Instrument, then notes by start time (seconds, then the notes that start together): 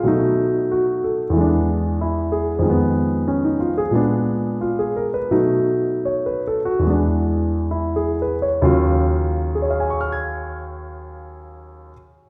grand piano
Already playing: F4
0.03 B2 F#3 A3
0.08 D#4
0.71 F#4
1.04 A4
1.30 E2 E3
1.37 G#3 D4
2.01 E4
2.32 G#4
2.59 F2 D#3
2.66 G#3
2.70 B3
3.28 C#4
3.44 D#4
3.60 F4
3.78 G#4
3.91 A#2 G#3 B3
3.95 D4
4.61 F4
4.79 G#4
4.96 A#4
5.14 B4
5.31 B2 F#3 A3 D#4
6.05 C#5
6.26 B4
6.47 A4
6.65 F#4
6.79 E2 E3
6.87 G#3 D4
7.71 E4
7.96 G#4
8.22 B4
8.42 C#5
8.62 D#2 C#3 F#3 F4
9.55 G#4
9.62 C#5
9.70 F5
9.80 G#5
9.90 C#6
10.01 F6
10.12 G#6